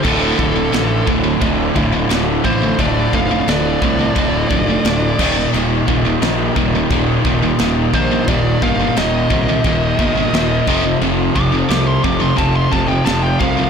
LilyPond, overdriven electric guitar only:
\new Staff \with { instrumentName = "Overdriven electric guitar" } { \clef bass \time 4/4 \key d \phrygian \tempo 4 = 88 <d, a, d>8 <d, a, d>8 <d, a, d>8 <d, a, d>8 <d, a, d>8 <d, a, d>8 <d, a, d>8 <d, a, d>8 | <d, a, d>8 <d, a, d>8 <d, a, d>8 <d, a, d>8 <d, a, d>8 <d, a, d>8 <d, a, d>8 <ees, bes, ees>8 | <ees, bes, ees>8 <ees, bes, ees>8 <ees, bes, ees>8 <ees, bes, ees>8 <ees, bes, ees>8 <ees, bes, ees>8 <ees, bes, ees>8 <ees, bes, ees>8 | <ees, bes, ees>8 <ees, bes, ees>8 <ees, bes, ees>8 <ees, bes, ees>8 <ees, bes, ees>8 <ees, bes, ees>8 <ees, bes, ees>8 <f, c f>8 |
<f, c f>8 <f, c f>8 <f, c f>8 <f, c f>8 <f, c f>8 <f, c f>8 <f, c f>8 <f, c f>8 | }